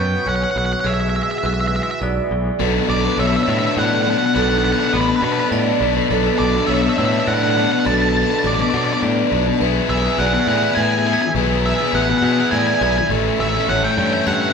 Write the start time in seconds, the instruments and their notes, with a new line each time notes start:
Already playing: picked electric bass F#2, clean electric guitar B2 F#3 B3, analog synth pad B3 F#4 C#5, vibraphone B4
0.00 lead electric guitar G5
0.26 picked electric bass B1, clean electric guitar C#4, vibraphone C#5, lead electric guitar F#5
0.36 lead electric guitar F#5
0.44 lead electric guitar F#5
0.51 clean electric guitar F#3, lead electric guitar F#5
0.56 picked electric bass B1, lead electric guitar F#5
0.66 lead electric guitar F#5
0.73 lead electric guitar F#5
0.80 analog synth pad G#3, vibraphone G#4, lead electric guitar F#5
0.84 picked electric bass B1, clean electric guitar B2, analog synth pad F#4 E5, lead electric guitar E5
0.94 lead electric guitar E5
1.01 lead electric guitar E5
1.10 lead electric guitar E5
1.14 clean electric guitar G#3, lead electric guitar E5
1.23 lead electric guitar E5
1.31 lead electric guitar E5
1.38 lead electric guitar E5
1.43 picked electric bass B1, clean electric guitar E3, vibraphone B4, lead electric guitar E5
1.54 lead electric guitar E5
1.61 lead electric guitar E5
1.68 lead electric guitar E5
1.73 clean electric guitar G#3, lead electric guitar E5
1.83 lead electric guitar E5
1.91 lead electric guitar E5
2.01 picked electric bass B1, clean electric guitar B3, vibraphone D5
2.31 picked electric bass B1, clean electric guitar E3
2.59 picked electric bass B1, distorted electric guitar B2 F#3 B3 D4, analog synth pad D4 A4 B5, vibraphone A4
2.88 picked electric bass B1, lead electric guitar D5
3.03 distorted electric guitar F#3 B3 D4
3.18 picked electric bass B1, distorted electric guitar B2 F#3 B3 D4, vibraphone C#5, lead electric guitar E5
3.27 lead electric guitar E5
3.32 muted distorted electric guitar stroke
3.37 lead electric guitar E5
3.43 distorted electric guitar B2, lead electric guitar E5
3.48 picked electric bass A2, distorted electric guitar F#3 B3 D4, lead electric guitar E5
3.59 lead electric guitar E5
3.66 lead electric guitar E5
3.77 picked electric bass A2, vibraphone D5, lead electric guitar F#5
3.86 lead electric guitar F#5
3.95 lead electric guitar F#5
4.02 distorted electric guitar B2, lead electric guitar F#5
4.07 distorted electric guitar F#3 B3 D4, lead electric guitar F#5
4.18 lead electric guitar F#5, muted distorted electric guitar stroke
4.26 lead electric guitar F#5
4.35 picked electric bass B1, distorted electric guitar B2 F#3 B3 D4, vibraphone A4, lead electric guitar F#5
4.42 lead electric guitar F#5
4.50 lead electric guitar F#5
4.58 lead electric guitar F#5
4.64 lead electric guitar F#5
4.72 lead electric guitar F#5
4.78 distorted electric guitar F#3 B3 D4, lead electric guitar F#5
4.89 distorted electric guitar B2, lead electric guitar F#5
4.93 picked electric bass A1, distorted electric guitar F#3 B3 D4, lead electric guitar B4, vibraphone B4
5.01 lead electric guitar B4
5.08 lead electric guitar B4, muted distorted electric guitar stroke
5.16 lead electric guitar B4
5.21 distorted electric guitar B2 F#3 B3 D4, picked electric bass B2, lead electric guitar B4
5.32 lead electric guitar B4
5.40 lead electric guitar B4
5.51 picked electric bass A2, vibraphone D5
5.80 picked electric bass B1, distorted electric guitar B2 F#3 B3 D4
5.95 muted distorted electric guitar stroke
6.09 picked electric bass B1, distorted electric guitar B2 F#3 B3 D4, vibraphone A4
6.38 picked electric bass B1, lead electric guitar D5
6.54 distorted electric guitar F#3 B3 D4
6.67 picked electric bass B1, distorted electric guitar B2 F#3 B3 D4, vibraphone C#5, lead electric guitar E5
6.74 lead electric guitar E5
6.82 lead electric guitar E5, muted distorted electric guitar stroke
6.89 lead electric guitar E5
6.96 picked electric bass A2, distorted electric guitar B2 F#3 B3 D4, lead electric guitar E5
7.05 lead electric guitar E5
7.12 lead electric guitar E5
7.20 lead electric guitar E5
7.27 picked electric bass A2, vibraphone D5, lead electric guitar F#5
7.34 lead electric guitar F#5
7.43 lead electric guitar F#5
7.50 lead electric guitar F#5
7.55 distorted electric guitar B2 F#3 B3 D4, lead electric guitar F#5
7.65 lead electric guitar F#5
7.71 lead electric guitar F#5, muted distorted electric guitar stroke
7.80 lead electric guitar F#5
7.86 picked electric bass B1, distorted electric guitar B2 F#3 B3 D4, vibraphone A4, lead electric guitar A5
7.94 lead electric guitar A5
8.02 lead electric guitar A5
8.09 lead electric guitar A5
8.17 lead electric guitar A5
8.23 lead electric guitar A5
8.28 distorted electric guitar F#3 B3 D4, lead electric guitar A5
8.39 lead electric guitar A5
8.43 picked electric bass A1, distorted electric guitar B2 F#3 B3 D4, vibraphone B4, lead electric guitar D5
8.54 lead electric guitar D5
8.59 lead electric guitar D5, muted distorted electric guitar stroke
8.70 distorted electric guitar B2 F#3, lead electric guitar D5
8.74 picked electric bass B2, distorted electric guitar B3 D4, lead electric guitar D5
8.84 lead electric guitar D5
8.93 lead electric guitar D5
9.03 picked electric bass A2, vibraphone D5
9.31 picked electric bass B1, distorted electric guitar B2 F#3 B3 D4
9.46 muted distorted electric guitar stroke
9.60 picked electric bass B1, distorted electric guitar B2 E3 B3 E4 G#4, analog synth pad G#4 E5 B5, vibraphone B4
9.89 picked electric bass B1, lead electric guitar E5
10.04 distorted electric guitar B3 E4 G#4
10.17 picked electric bass B1, distorted electric guitar B2 E3 B3 E4 G#4, vibraphone D5, lead electric guitar F#5
10.26 lead electric guitar F#5
10.34 lead electric guitar F#5, muted distorted electric guitar stroke
10.40 lead electric guitar F#5
10.47 picked electric bass A2, distorted electric guitar E3 B3 E4 G#4, lead electric guitar F#5
10.57 lead electric guitar F#5
10.64 lead electric guitar F#5
10.72 lead electric guitar F#5 G#5
10.77 picked electric bass A2, vibraphone E5
10.82 lead electric guitar G#5
10.91 lead electric guitar G#5
10.99 lead electric guitar G#5
11.05 distorted electric guitar E3 B3 E4 G#4, lead electric guitar G#5
11.13 lead electric guitar G#5
11.22 lead electric guitar G#5, muted distorted electric guitar stroke
11.35 picked electric bass B1, distorted electric guitar B2 E3 B3 E4 G#4, vibraphone B4
11.66 lead electric guitar E5
11.78 distorted electric guitar B3 E4 G#4
11.93 picked electric bass A1, distorted electric guitar B2 E3 B3 E4 G#4, vibraphone B4, lead electric guitar F#5
12.02 lead electric guitar F#5
12.08 lead electric guitar F#5, muted distorted electric guitar stroke
12.18 distorted electric guitar E3, lead electric guitar F#5
12.22 picked electric bass B2, distorted electric guitar B3 E4 G#4, lead electric guitar F#5
12.33 lead electric guitar F#5
12.40 lead electric guitar F#5
12.51 picked electric bass A2, vibraphone D5, lead electric guitar G#5
12.59 lead electric guitar G#5
12.67 lead electric guitar G#5
12.74 lead electric guitar G#5
12.81 picked electric bass B1, distorted electric guitar E3 B3 E4 G#4, lead electric guitar G#5
12.91 lead electric guitar G#5
12.96 lead electric guitar G#5, muted distorted electric guitar stroke
13.09 picked electric bass A1, distorted electric guitar A2 E3 A3 C#4 E4, analog synth pad A4 C#6, vibraphone A4
13.39 picked electric bass A1, lead electric guitar E5
13.53 distorted electric guitar A3 C#4 E4
13.67 picked electric bass A1, distorted electric guitar A2 E3 A3 C#4 E4, vibraphone C#5, lead electric guitar F#5
13.82 lead electric guitar G5, muted distorted electric guitar stroke
13.92 lead electric guitar G5
13.96 picked electric bass G2, distorted electric guitar E3 A3 C#4 E4, lead electric guitar G5
14.07 lead electric guitar G5
14.13 lead electric guitar G5
14.21 lead electric guitar G5
14.27 picked electric bass G2, vibraphone E5, lead electric guitar F#5
14.34 lead electric guitar F#5
14.42 lead electric guitar F#5
14.50 lead electric guitar F#5